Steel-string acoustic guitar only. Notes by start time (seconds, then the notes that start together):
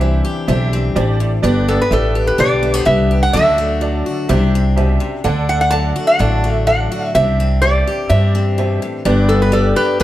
Already playing: C4 D4
0.01 E3
0.25 G4
0.48 G2 D4
0.73 C4
0.97 B2
1.20 A2
1.44 G2 D4
1.68 B3
1.92 G3
2.15 G4
2.38 D3 D4
2.63 A3
2.74 B3
2.85 G3
3.11 G4
3.34 D3 F#3 A3 D4 F#4
3.58 A3
3.81 F#3
4.06 F#4
4.29 C3 D4
4.55 C4
4.78 B2
5.00 C3
5.24 D3 D4
5.49 A3
5.72 F#3
5.96 F#4
6.19 A2 D4
6.44 A3
6.67 F#3
6.92 F#4
7.15 C3 D4
7.40 C4
7.62 E3
7.87 G4
8.10 G2 D4
8.35 C4
8.58 B2
8.82 A2
9.05 G2 D4
9.29 B3
9.52 G3
9.76 G4
10.00 D3